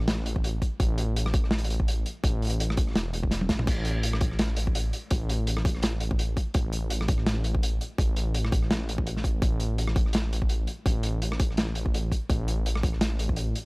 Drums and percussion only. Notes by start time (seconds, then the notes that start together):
0.00 cross-stick
0.08 snare, closed hi-hat
0.26 closed hi-hat
0.36 kick
0.44 closed hi-hat
0.62 kick, closed hi-hat
0.80 kick, closed hi-hat
0.98 closed hi-hat
1.16 closed hi-hat
1.26 cross-stick
1.34 kick, closed hi-hat
1.44 cross-stick
1.51 snare, closed hi-hat
1.58 closed hi-hat
1.64 closed hi-hat
1.70 closed hi-hat
1.80 kick
1.88 closed hi-hat
2.06 closed hi-hat
2.24 kick, closed hi-hat
2.42 closed hi-hat
2.45 closed hi-hat
2.47 closed hi-hat
2.50 closed hi-hat
2.60 closed hi-hat
2.70 cross-stick
2.77 kick, closed hi-hat
2.87 cross-stick
2.91 cross-stick
2.95 cross-stick, snare, closed hi-hat
3.00 cross-stick
3.13 closed hi-hat
3.23 kick
3.31 snare, closed hi-hat
3.41 high tom
3.49 kick, snare, closed hi-hat
3.59 mid tom
3.67 kick, closed hi-hat, crash
3.85 closed hi-hat
4.03 closed hi-hat
4.13 cross-stick
4.21 kick, closed hi-hat
4.31 cross-stick
4.39 snare, closed hi-hat
4.56 closed hi-hat
4.67 kick
4.75 closed hi-hat
4.93 closed hi-hat
5.11 kick, closed hi-hat
5.29 closed hi-hat
5.47 closed hi-hat
5.57 cross-stick
5.65 kick, closed hi-hat
5.75 cross-stick
5.77 cross-stick
5.80 cross-stick, closed hi-hat
5.83 cross-stick, snare
5.86 cross-stick
5.89 cross-stick
6.00 closed hi-hat
6.11 kick
6.19 closed hi-hat
6.37 kick, closed hi-hat
6.54 kick, closed hi-hat
6.73 closed hi-hat
6.90 closed hi-hat
7.01 cross-stick
7.08 kick, closed hi-hat
7.18 cross-stick
7.26 snare, closed hi-hat
7.44 closed hi-hat
7.55 kick
7.63 closed hi-hat
7.81 closed hi-hat
7.98 kick, closed hi-hat
8.16 closed hi-hat
8.34 closed hi-hat
8.45 cross-stick
8.52 kick, closed hi-hat
8.63 cross-stick
8.71 snare, closed hi-hat
8.89 closed hi-hat
8.98 kick
9.07 closed hi-hat
9.16 snare
9.24 kick, closed hi-hat
9.42 kick, closed hi-hat
9.60 closed hi-hat
9.78 closed hi-hat
9.87 cross-stick
9.96 kick, closed hi-hat
10.06 cross-stick
10.13 snare, closed hi-hat
10.33 closed hi-hat
10.42 kick
10.49 closed hi-hat
10.67 closed hi-hat
10.86 kick, closed hi-hat
11.03 closed hi-hat
11.22 closed hi-hat
11.32 cross-stick
11.40 kick, closed hi-hat
11.51 cross-stick
11.57 snare, closed hi-hat
11.75 closed hi-hat
11.86 kick
11.94 closed hi-hat
12.12 kick, closed hi-hat
12.30 kick, closed hi-hat
12.48 closed hi-hat
12.66 closed hi-hat
12.75 cross-stick
12.83 kick, closed hi-hat
12.93 cross-stick
13.01 snare, closed hi-hat
13.19 closed hi-hat
13.29 kick
13.36 closed hi-hat
13.55 closed hi-hat